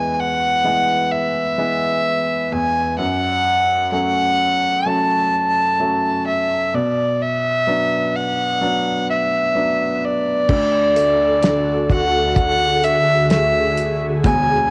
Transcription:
0.00 2.49 E2 medium
0.00 0.62 E3 soft
0.00 0.62 G#3 soft
0.00 0.62 B3 soft
0.00 0.13 G#5 medium
0.13 0.21 G#5 medium
0.19 1.13 F#5 medium
0.64 1.56 E3 soft
0.64 1.56 G#3 soft
0.64 1.56 B3 soft
1.11 2.54 E5 medium
1.58 2.49 E3 soft
1.58 2.49 G#3 soft
1.58 2.50 B3 soft
2.52 2.98 E2 medium
2.52 2.99 G#5 medium
2.98 6.70 F#2 medium
2.98 3.89 F#5 medium
3.92 4.83 F#3 soft
3.92 4.84 A3 soft
3.92 4.84 C#4 soft
3.92 4.89 F#5 medium
4.86 5.77 F#3 soft
4.86 5.78 A3 soft
4.86 5.78 C#4 soft
4.86 6.27 A5 medium
5.80 6.71 F#3 soft
5.80 6.71 A3 soft
5.80 6.72 C#4 soft
6.27 6.76 E5 medium
6.74 10.45 B2 medium
6.74 7.23 D5 medium
7.22 8.18 E5 medium
7.67 8.59 F#3 soft
7.67 8.59 B3 soft
7.67 8.59 D4 soft
8.16 9.09 F#5 medium
8.61 9.52 F#3 soft
8.61 9.53 B3 soft
8.61 9.53 D4 soft
9.10 10.06 E5 medium
9.55 10.46 F#3 soft
9.55 10.47 B3 soft
9.55 10.47 D4 soft
10.04 11.93 D5 medium
10.49 14.20 D2 medium
10.49 14.21 D2 medium
10.49 14.20 D3 medium
10.49 14.21 D3 medium
10.49 14.21 F#4 medium
10.49 12.35 A4 medium
10.49 kick loud
10.49 crash medium
10.95 12.79 A3 medium
10.95 closed hi-hat medium
11.43 13.27 D4 medium
11.43 snare loud
11.43 closed hi-hat medium
11.90 13.73 F#4 medium
11.90 12.36 F#5 medium
11.90 kick medium
11.90 closed hi-hat medium
12.36 14.70 G#4 medium
12.36 12.85 F#5 medium
12.36 kick medium
12.36 closed hi-hat medium
12.84 13.31 E5 medium
12.84 closed hi-hat medium
13.30 14.22 A3 soft
13.30 13.97 E5 medium
13.30 snare loud
13.30 closed hi-hat medium
13.77 closed hi-hat medium
14.24 14.70 E1 medium
14.24 14.70 E2 medium
14.24 14.70 E3 medium
14.24 14.70 D4 medium
14.24 14.70 G#5 loud
14.24 kick loud
14.24 closed hi-hat medium

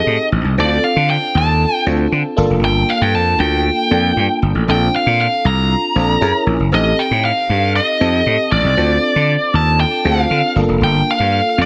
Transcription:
0.00 0.58 C4 medium
0.00 0.59 D#4 medium
0.00 0.60 G4 medium
0.00 0.60 G#4 medium
0.00 0.59 A4 medium
0.00 0.28 D#5 medium
0.07 0.16 A2 medium
0.32 0.42 A1 medium
0.44 0.55 C2 medium
0.58 0.77 D2 loud
0.58 1.44 C4 medium
0.58 1.44 D4 medium
0.58 0.64 D#4 medium
0.58 1.44 A4 medium
0.58 0.83 D5 medium
0.65 1.47 F4 medium
0.84 1.10 F5 medium
0.96 1.16 D3 medium
1.10 1.34 G5 loud
1.35 1.64 D#2 medium
1.35 1.84 A5 loud
1.86 2.06 D2 medium
1.86 2.37 C4 medium
1.86 2.35 D4 medium
1.86 2.36 F4 medium
1.86 2.36 A4 medium
2.12 2.22 D3 loud
2.37 2.47 G1 medium
2.37 3.23 A#3 loud
2.37 3.23 D4 medium
2.37 3.23 F4 medium
2.37 3.23 A4 loud
2.50 2.60 F1 medium
2.63 2.82 G1 loud
2.63 2.90 G5 loud
2.90 3.02 F5 medium
3.01 3.15 G2 medium
3.01 3.15 G5 medium
3.15 3.34 F2 medium
3.15 3.40 A5 loud
3.40 3.69 D2 medium
3.40 4.38 G5 loud
3.90 4.11 F2 medium
3.90 4.55 A#3 medium
3.90 4.55 D4 medium
3.90 4.55 F4 medium
3.90 4.55 A4 medium
4.16 4.26 G2 medium
4.42 4.52 G1 medium
4.55 4.65 A1 medium
4.68 4.87 A#1 loud
4.68 5.54 C4 medium
4.68 5.54 D4 medium
4.68 5.54 F4 medium
4.68 5.54 A4 medium
4.68 4.95 G5 medium
4.96 5.20 F5 medium
5.06 5.26 A#2 medium
5.21 5.47 F5 medium
5.45 5.74 C2 medium
5.45 6.44 A#5 loud
5.95 6.15 A#1 medium
5.95 6.21 C4 medium
5.95 6.21 D4 medium
5.95 6.22 F4 medium
5.95 6.22 A4 medium
6.21 6.31 F#2 medium
6.21 6.64 C#4 loud
6.21 6.64 E4 medium
6.21 6.64 G#4 medium
6.21 6.65 A#4 loud
6.46 6.56 A#1 medium
6.60 6.70 F#1 medium
6.72 6.92 A1 loud
6.72 7.58 C4 medium
6.72 7.58 D#4 medium
6.72 7.59 G4 medium
6.72 7.59 A4 medium
6.72 7.00 D#5 medium
6.99 7.25 G5 medium
7.11 7.30 A2 medium
7.25 7.72 F5 medium
7.49 7.79 G2 medium
7.76 8.51 D#5 loud
8.00 8.20 F2 medium
8.00 8.65 C4 medium
8.00 8.65 D#4 medium
8.00 8.65 G4 medium
8.00 8.65 A4 medium
8.26 8.36 A2 medium
8.52 8.61 A1 medium
8.52 9.57 D5 medium
8.64 8.74 C2 medium
8.77 8.97 D2 loud
8.77 9.63 C4 medium
8.77 9.63 D4 medium
8.77 9.63 F4 medium
8.77 9.64 A4 medium
9.16 9.35 D3 medium
9.54 9.83 D#2 medium
9.54 9.79 A5 loud
9.80 10.06 G5 loud
10.04 10.25 D2 medium
10.04 10.56 C4 medium
10.04 10.55 D4 medium
10.04 10.55 F4 medium
10.04 10.12 G#4 medium
10.04 10.54 F5 medium
10.12 10.56 A4 medium
10.30 10.40 D3 loud
10.56 10.66 G1 medium
10.56 11.42 A#3 medium
10.56 11.42 D4 medium
10.56 11.42 F4 medium
10.56 11.43 A4 medium
10.68 10.79 F1 medium
10.81 11.01 G1 loud
10.81 11.09 G5 loud
11.11 11.61 F5 loud
11.20 11.40 G2 medium
11.58 11.65 F2 medium
11.58 11.65 D#5 medium

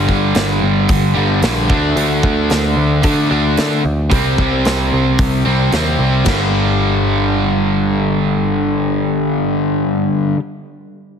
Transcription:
0.00 1.13 G2 medium
0.00 1.14 D3 medium
0.00 1.13 G3 medium
0.09 0.33 G1 medium
0.09 kick medium
0.35 0.60 G1 medium
0.35 snare loud
0.35 open hi-hat soft
0.62 0.87 G1 medium
0.89 1.14 G1 medium
0.89 kick loud
0.89 open hi-hat medium
1.15 1.41 G1 medium
1.15 1.41 G2 medium
1.15 1.41 D3 medium
1.15 1.40 G3 medium
1.42 1.67 A#1 medium
1.42 1.67 G2 medium
1.42 1.67 D3 medium
1.42 1.69 G3 medium
1.42 snare loud
1.42 open hi-hat medium
1.69 1.94 D2 medium
1.69 3.01 D3 medium
1.69 3.02 A3 medium
1.69 3.03 D4 medium
1.69 kick loud
1.96 2.21 D2 medium
1.96 open hi-hat soft
2.23 2.48 D2 medium
2.23 kick medium
2.50 2.75 D2 medium
2.50 snare medium
2.50 open hi-hat soft
2.77 3.02 D2 medium
3.03 3.28 D3 medium
3.03 3.29 D3 medium
3.03 3.29 A3 medium
3.03 3.29 D4 medium
3.03 kick medium
3.03 open hi-hat soft
3.30 3.55 D2 medium
3.30 3.83 D3 medium
3.30 3.83 A3 medium
3.30 3.82 D4 medium
3.57 3.82 D3 medium
3.57 snare loud
3.57 open hi-hat soft
3.85 4.09 D2 medium
4.10 4.36 C2 medium
4.10 5.43 C3 medium
4.10 5.44 G3 medium
4.10 5.44 C4 medium
4.10 kick loud
4.10 open hi-hat soft
4.38 4.63 C2 medium
4.38 kick medium
4.65 4.90 C2 medium
4.65 snare medium
4.65 open hi-hat soft
4.93 5.17 C2 medium
5.19 5.43 C2 medium
5.19 kick loud
5.19 open hi-hat medium
5.45 5.70 C2 medium
5.45 5.71 C3 medium
5.45 5.71 G3 medium
5.45 5.70 C4 medium
5.72 5.97 D#2 medium
5.72 6.24 C3 medium
5.72 6.25 G3 medium
5.72 6.25 C4 medium
5.72 snare loud
5.72 open hi-hat soft
5.99 6.24 C2 medium
6.25 10.33 G1 medium
6.25 10.36 G2 medium
6.25 10.39 D3 loud
6.25 10.40 G3 medium
6.25 kick medium
6.25 snare medium
6.25 crash medium

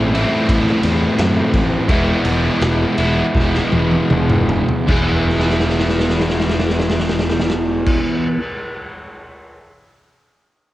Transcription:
0.00 0.23 A1 loud
0.00 0.12 A2 medium
0.00 0.16 E3 loud
0.00 0.13 A3 medium
0.00 0.13 C4 medium
0.00 0.14 E4 loud
0.15 1.88 A2 medium
0.15 1.88 E3 medium
0.15 1.88 A3 medium
0.15 1.87 C4 medium
0.15 1.91 E4 medium
0.15 ride medium
0.49 0.71 A1 medium
0.49 kick loud
0.49 ride loud
0.67 snare soft
0.83 1.05 E2 medium
0.83 ride medium
1.18 1.40 F#2 medium
1.18 snare loud
1.18 ride loud
1.53 1.76 A1 medium
1.53 kick medium
1.53 ride medium
1.88 2.11 E1 medium
1.88 2.95 E3 medium
1.88 2.96 G#3 medium
1.88 2.96 B3 medium
1.88 2.96 E4 loud
1.88 kick loud
1.88 ride loud
2.25 2.48 E1 loud
2.25 ride medium
2.61 2.84 E1 medium
2.61 snare loud
2.61 ride medium
2.97 3.21 E1 medium
2.97 4.87 E3 medium
2.97 4.87 G#3 medium
2.97 4.87 B3 medium
2.97 4.86 E4 medium
2.97 ride medium
3.35 3.58 E1 medium
3.35 kick loud
3.35 snare medium
3.54 snare medium
3.72 3.96 E1 medium
3.72 high tom medium
3.91 high tom medium
4.10 4.59 E1 loud
4.10 mid tom medium
4.29 mid tom medium
4.49 floor tom loud
4.69 floor tom medium
4.88 7.98 E1 medium
4.88 8.38 E3 medium
4.88 8.39 B3 loud
4.88 8.40 E4 loud
4.88 kick loud
4.88 crash medium
4.92 8.42 G#4 loud
5.29 snare soft
5.40 snare medium
5.50 snare medium
5.60 snare medium
5.70 snare soft
5.79 snare medium
5.89 snare medium
6.00 snare medium
6.10 snare medium
6.20 snare medium
6.30 snare medium
6.40 snare medium
6.49 snare medium
6.60 snare medium
6.70 snare medium
6.80 snare medium
6.90 snare medium
7.00 snare medium
7.09 snare medium
7.19 snare medium
7.30 snare medium
7.40 snare medium
7.50 snare medium
7.86 kick loud
7.86 crash medium

